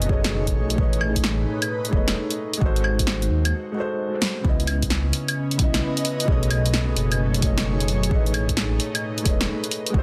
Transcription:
0.00 0.57 F#1 loud
0.00 0.05 B2 medium
0.00 0.78 B2 medium
0.00 0.07 A3 medium
0.00 2.61 A3 medium
0.00 3.53 D#4 medium
0.00 0.09 G#4 medium
0.00 2.61 G#4 medium
0.00 0.11 C#5 medium
0.00 2.61 C#5 medium
0.00 0.13 D#5 loud
0.00 closed hi-hat soft
0.05 0.74 B2 medium
0.05 0.73 A3 medium
0.05 0.75 G#4 medium
0.09 0.77 C#5 medium
0.09 0.78 D#5 medium
0.09 kick loud
0.24 snare loud
0.24 closed hi-hat soft
0.47 kick medium
0.47 closed hi-hat soft
0.55 0.77 B1 loud
0.70 closed hi-hat medium
0.74 1.46 A1 loud
0.74 2.61 A2 medium
0.74 1.87 A3 medium
0.74 1.89 G#4 medium
0.74 1.91 B4 medium
0.74 kick loud
0.80 1.92 C#5 medium
0.80 1.93 D#5 medium
0.93 closed hi-hat soft
1.01 claves medium
1.16 2.61 B4 medium
1.16 kick medium
1.16 closed hi-hat medium
1.24 snare loud
1.62 closed hi-hat medium
1.62 claves medium
1.85 closed hi-hat soft
1.89 2.14 E1 medium
1.89 2.58 A3 medium
1.89 2.59 G#4 medium
1.89 kick loud
1.93 2.60 B4 medium
1.93 2.61 C#5 medium
1.93 2.62 D#5 medium
2.08 snare loud
2.08 closed hi-hat medium
2.30 closed hi-hat soft
2.54 3.70 G#3 medium
2.54 closed hi-hat medium
2.60 3.29 G#1 loud
2.60 3.73 F#4 medium
2.60 3.75 A4 medium
2.60 kick loud
2.65 3.76 C5 loud
2.76 closed hi-hat soft
2.84 claves medium
2.99 kick medium
2.99 closed hi-hat medium
3.07 snare loud
3.22 closed hi-hat soft
3.30 3.53 D#2 loud
3.45 closed hi-hat medium
3.45 claves medium
3.72 4.41 G#3 medium
3.72 4.42 F#4 medium
3.77 4.43 A4 medium
3.77 4.45 C5 loud
4.22 snare medium
4.41 5.12 C#2 loud
4.41 5.54 C#3 medium
4.41 6.28 C#3 medium
4.41 5.56 B3 medium
4.41 kick loud
4.46 5.58 E4 medium
4.46 5.59 D#5 medium
4.60 closed hi-hat soft
4.67 open hi-hat medium
4.67 claves medium
4.75 7.03 C#4 medium
4.83 kick medium
4.83 closed hi-hat medium
4.90 snare loud
5.13 open hi-hat medium
5.28 6.28 E4 medium
5.28 7.03 B4 medium
5.28 7.03 D#5 medium
5.28 closed hi-hat medium
5.28 claves medium
5.51 6.24 C#3 medium
5.51 closed hi-hat soft
5.58 5.81 B1 medium
5.58 6.25 B3 medium
5.58 6.27 E4 medium
5.58 kick loud
5.58 open hi-hat medium
5.63 6.28 D#5 loud
5.74 snare loud
5.74 closed hi-hat medium
5.97 closed hi-hat soft
6.05 open hi-hat medium
6.20 7.37 B2 medium
6.20 closed hi-hat medium
6.26 6.96 B1 loud
6.26 8.11 B2 loud
6.26 7.39 A3 medium
6.26 7.41 G#4 medium
6.26 7.42 C#5 medium
6.26 kick loud
6.32 7.43 D#5 loud
6.43 closed hi-hat soft
6.50 9.94 G#4 loud
6.50 open hi-hat medium
6.50 claves medium
6.56 9.94 A3 medium
6.66 closed hi-hat medium
6.74 snare loud
6.96 7.87 F#1 loud
6.96 open hi-hat medium
7.02 9.94 C#5 medium
7.12 10.03 D#4 medium
7.12 closed hi-hat medium
7.12 claves medium
7.34 8.07 B2 medium
7.34 closed hi-hat soft
7.40 8.06 A3 medium
7.40 8.08 G#4 medium
7.40 kick loud
7.40 open hi-hat medium
7.44 8.10 C#5 medium
7.44 8.11 D#5 loud
7.58 snare loud
7.58 closed hi-hat medium
7.80 closed hi-hat soft
7.88 8.10 F#1 loud
7.88 open hi-hat medium
8.03 9.20 A3 medium
8.03 closed hi-hat medium
8.09 8.79 A1 loud
8.09 9.94 A2 medium
8.09 9.22 G#4 medium
8.09 9.24 B4 medium
8.09 9.25 C#5 medium
8.09 kick loud
8.15 9.26 D#5 medium
8.26 closed hi-hat soft
8.34 open hi-hat medium
8.34 claves medium
8.49 kick medium
8.49 closed hi-hat medium
8.57 snare loud
8.80 open hi-hat medium
8.95 9.94 B4 medium
8.95 closed hi-hat medium
8.95 claves medium
9.18 9.90 A3 medium
9.18 closed hi-hat soft
9.24 9.47 E1 medium
9.24 9.91 G#4 medium
9.24 9.93 B4 medium
9.24 9.93 C#5 medium
9.24 kick loud
9.24 open hi-hat medium
9.30 9.94 D#5 loud
9.41 snare loud
9.41 closed hi-hat medium
9.64 closed hi-hat soft
9.71 open hi-hat medium
9.87 10.03 G#3 medium
9.87 closed hi-hat medium
9.93 10.03 G#1 loud
9.93 10.03 F#4 medium
9.93 10.03 A4 medium
9.93 kick loud
9.98 10.03 C5 loud

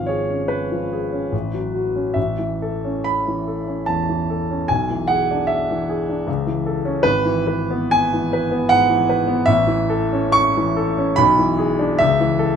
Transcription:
0.00 1.28 G#1 soft
0.00 0.23 F3 soft
0.00 1.35 F5 medium
0.06 0.42 G#4 soft
0.06 0.49 C#5 medium
0.30 0.96 C#4 soft
0.48 1.72 B4 medium
0.72 1.04 F3 soft
0.93 1.25 G#4 soft
1.12 1.33 C#4 soft
1.32 2.13 A1 soft
1.54 1.87 F#3 soft
1.74 2.08 F#4 soft
1.96 2.16 C#4 soft
2.14 4.65 A1 soft
2.14 3.05 E5 medium
2.39 2.75 E3 soft
2.62 2.98 A4 soft
2.84 3.51 C#4 soft
3.04 3.87 B5 medium
3.28 3.59 E3 soft
3.48 3.79 A4 soft
3.67 3.99 C#4 soft
3.86 4.21 E2 soft
3.86 4.69 A5 medium
4.09 4.41 E3 soft
4.30 4.62 A4 soft
4.50 4.70 C#4 soft
4.68 6.24 B1 medium
4.68 5.09 G#5 medium
4.90 5.22 E3 soft
5.08 5.42 G#4 soft
5.08 5.49 F#5 medium
5.31 5.94 D4 soft
5.47 6.64 E5 medium
5.71 6.01 E3 soft
5.89 6.20 G#4 soft
6.09 6.28 D4 soft
6.27 7.02 C#2 medium
6.47 6.77 E3 soft
6.66 6.97 A4 soft
6.85 7.05 C#4 medium
7.03 9.45 G#1 medium
7.03 7.46 B4 medium
7.25 7.62 E3 medium
7.47 7.84 B4 medium
7.70 8.37 B3 medium
7.91 8.71 G#5 loud
8.13 8.45 E3 soft
8.33 8.64 B4 medium
8.51 8.83 B3 medium
8.69 9.02 G#2 soft
8.69 9.47 F#5 loud
8.90 9.21 E3 medium
9.09 9.41 B4 medium
9.27 9.48 B3 medium
9.46 11.15 A1 medium
9.46 10.36 E5 loud
9.67 10.05 E3 medium
9.90 10.27 A4 medium
10.12 10.83 C#4 medium
10.32 11.18 C#6 loud
10.57 10.91 E3 medium
10.77 11.11 A4 medium
10.98 11.19 C#4 medium
11.16 11.97 B1 medium
11.16 11.99 B5 loud
11.38 11.72 E3 medium
11.58 11.92 G#4 medium
11.79 12.00 D4 medium
11.99 12.56 C#2 medium
11.99 12.56 E5 loud
12.20 12.52 E3 medium
12.39 12.56 A4 medium

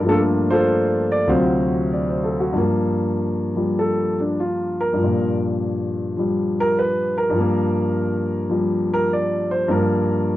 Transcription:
0.00 1.24 G2 soft
0.00 1.26 F3 medium
0.07 1.28 A3 soft
0.07 1.26 D4 medium
0.07 0.50 F4 medium
0.07 0.18 A4 medium
0.11 1.30 A#3 medium
0.50 1.26 F4 medium
0.50 1.26 A4 medium
0.50 1.11 C5 medium
1.12 1.30 D5 medium
1.27 2.55 D2 medium
1.27 2.55 C3 medium
1.27 2.56 F#3 medium
1.27 2.52 F4 soft
1.27 2.39 F#4 soft
1.27 2.08 C5 medium
1.27 2.56 F5 medium
1.93 2.23 D5 soft
2.09 2.36 C5 soft
2.24 2.43 A4 soft
2.40 2.61 F#4 soft
2.53 4.92 G2 medium
2.53 3.54 F3 medium
2.58 4.99 A#3 medium
3.55 4.95 F3 soft
3.55 4.98 G3 soft
3.79 4.18 A4 medium
4.20 4.38 D4 soft
4.40 4.79 F4 medium
4.81 5.36 A#4 medium
4.93 7.28 G2 soft
4.93 6.15 F3 soft
5.03 7.36 A#2 soft
6.17 7.32 F3 soft
6.17 7.34 G3 soft
6.60 6.77 A#4 medium
6.79 7.16 B4 medium
7.18 8.47 A#4 medium
7.30 9.66 G2 medium
7.30 8.48 F3 medium
7.40 9.68 A#3 medium
8.50 9.67 F3 soft
8.50 9.69 G3 soft
8.94 9.10 A#4 medium
9.13 9.50 D5 medium
9.51 9.69 C5 medium
9.68 10.37 G2 medium
9.68 10.37 F3 medium
9.68 10.37 A#3 medium
9.68 10.37 A#4 medium

